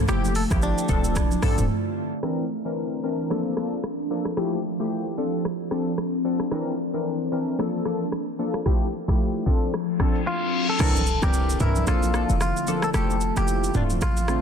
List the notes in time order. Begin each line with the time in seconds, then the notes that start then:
Already playing: A3
0.08 F1 F3 A3 E4 G4, cross-stick, low conga, shaker
0.24 high conga, shaker
0.35 A4, open hi-hat, shaker
0.50 G1 F3 A3 E4 G4, kick, cross-stick, high conga, shaker
0.62 D4, shaker
0.78 shaker
0.89 D1 D3 F3 C4 D4 F4 A4, kick, low conga, shaker
1.04 high conga, shaker
1.15 kick, cross-stick, low conga, shaker
1.31 high conga, shaker
1.42 A1 F3 C4 D4 A4, cross-stick, mid tom, open hi-hat, high conga, shaker
1.58 D1, mid tom, shaker
2.23 E3 C4 D4 A#4, cross-stick, shaker
2.39 shaker
2.49 shaker
2.65 E3 C4 D4 A#4, shaker
2.76 shaker
2.92 shaker
3.03 E3 C4 D4 A#4, shaker
3.19 shaker
3.30 F3 A#3 D4 A4, cross-stick, shaker
3.46 shaker
3.57 F3 A#3 D4 A4, cross-stick, shaker
3.72 shaker
3.84 cross-stick, shaker
4.00 shaker
4.10 F3 A#3 D4 A4, shaker
4.25 cross-stick, shaker
4.37 F3 A3 E4 G4, cross-stick, shaker
4.53 shaker
4.64 shaker
4.79 F3 A3 E4 G4, shaker
4.91 shaker
5.07 shaker
5.17 F3 C4 D4 A4, shaker
5.33 shaker
5.44 cross-stick, shaker
5.60 shaker
5.71 F3 C4 D4 A4, cross-stick, shaker
5.87 shaker
5.98 cross-stick, shaker
6.14 shaker
6.24 F3 C4 D4 A4, shaker
6.40 cross-stick, shaker
6.51 E3 C4 D4 A#4, cross-stick, shaker
6.68 shaker
6.78 shaker
6.94 E3 C4 D4 A#4, shaker
7.05 shaker
7.21 shaker
7.31 E3 C4 D4 A#4, shaker
7.47 shaker
7.58 F3 A#3 D4 A4, cross-stick, shaker
7.74 shaker
7.85 F3 A#3 D4 A4, cross-stick, shaker
8.01 shaker
8.12 cross-stick, shaker
8.28 shaker
8.39 F3 A#3 D4 A4, shaker
8.54 cross-stick, shaker
8.66 F3 A3 E4 G4, kick, cross-stick, shaker
8.82 shaker
8.92 shaker
9.08 F3 A3 E4 G4, kick, cross-stick, shaker
9.19 shaker
9.35 shaker
9.46 F3 C4 D4 A4, kick, shaker
9.61 shaker
9.73 cross-stick, reverse cymbal, shaker
9.88 shaker
9.99 F3 C4 D4 A4, kick, cross-stick, shaker
10.15 shaker
10.27 F4
10.70 A4
10.79 C2 D3 E3 A#3 C4 D4 E4 A4 A#4, cross-stick, crash, impact, low conga, shaker
10.96 high conga, shaker
11.07 shaker
11.22 C2 E3 C4 D4 G4 A#4, cross-stick, high conga, shaker
11.34 shaker
11.50 shaker
11.60 C2 E3 C4 D4 E4 A#4, mid tom, low conga, shaker
11.76 high conga, shaker
11.87 A#1 D3 F3 A3 A#3 D4 F4 A4, cross-stick, low conga, shaker
12.03 high conga, shaker
12.14 F3 A#3 D4 A4, cross-stick, high conga, shaker
12.29 F1, shaker
12.41 F4, cross-stick, high conga, shaker
12.57 shaker
12.67 F3 A#3 D4 A4, high conga, shaker
12.82 A4, cross-stick, shaker
12.93 F1 F3 A3 E4 G4 A4, cross-stick, low conga, shaker
13.10 high conga, shaker
13.21 shaker
13.36 F1 F3 A3 E4 G4, cross-stick, high conga, shaker
13.48 shaker
13.64 shaker
13.74 D1 D3 A3 C4 D4 F4, mid tom, low conga, shaker
13.90 high conga, shaker
14.01 A1 F4, cross-stick, low conga, shaker
14.17 high conga, shaker
14.28 D3 A3 C4 F4, cross-stick, high conga, shaker